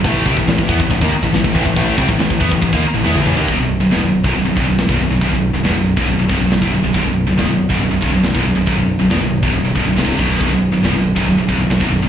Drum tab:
CC |x---x---x---x---|x---x---x-------|----------------|----------------|
HH |----------------|----------------|o---o---o---o---|o---o---o---o---|
SD |----o-------o---|----o-------o---|----o-------o---|----o-------o---|
T1 |----------------|-------------o--|----------------|----------------|
T2 |----------------|--------------o-|----------------|----------------|
FT |----------------|---------------o|----------------|----------------|
BD |o-oo-ooooo-o-ooo|o-oo-ooooo------|o------o--o--o--|o------o--o--o--|

CC |----------------|----------------|----------------|
HH |o---o---o---o---|o---o---o---o---|o---o---o---o---|
SD |----o-------o---|----o-------o---|----o-------o---|
T1 |----------------|----------------|----------------|
T2 |----------------|----------------|----------------|
FT |----------------|----------------|----------------|
BD |o------o--o--o--|o------o--o---o-|o------o--o--o--|